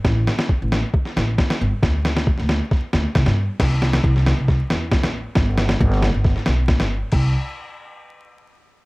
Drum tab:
CC |----------------|----------------|x---------------|----------------|
SD |o-oo--o--oo-oo--|o-oo-oo-o-o-oo--|o-oo-oo-o-o-oo--|o-oo-oo-ooo-oo--|
BD |o---o---o---o---|o---o---o---o---|o---o---o---o---|o---o---o---o---|

CC |x---------------|
SD |----------------|
BD |o---------------|